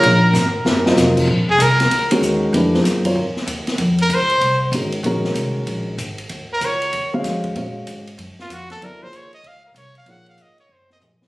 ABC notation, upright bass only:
X:1
M:4/4
L:1/8
Q:"Swing" 1/4=191
K:Bbm
V:1 name="Upright bass" clef=bass
B,,,2 A,,,2 G,,,2 F,,,2 | (3B,,, A,,, F,,, C,,2 D,,2 E,,2 | F,,2 G,,2 A,, z E,,2 | F,,2 D,,2 C,,2 A,,,2 |
B,,,2 C,,2 B,,,2 A,,,2 | E,,2 D,,2 E,,2 F,,2 | B,,2 A,,2 G,, z F,,2 | (3G,, E,, D,, E,, z D,,2 C,,2 |
B,,,2 A,,,2 G,,,2 B,,,2 |]